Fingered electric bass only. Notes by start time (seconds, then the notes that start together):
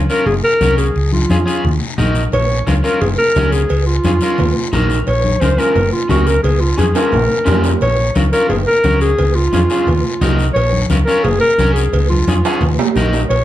0.26 F#1
0.61 C2
0.96 C#2
1.30 F2
1.64 D#2
1.99 A#1
2.33 A#1
2.67 C#2
3.02 F#1
3.36 C#2
3.70 C#2
4.05 F2
4.38 D#2
4.73 A#1
5.07 A#1
5.42 C#2
5.76 F#1
6.10 C#2
6.44 C#2
6.79 F2
7.13 A#1
7.47 F2
7.81 A#1
8.16 C#2
8.51 F#1
8.84 C#2
9.19 C#2
9.54 F2
9.88 D#2
10.21 C2
10.56 A#1
10.89 C#2
11.24 F#1
11.59 C2
11.93 C#2
12.28 F2
12.62 D#2
12.96 A#1
13.30 A#1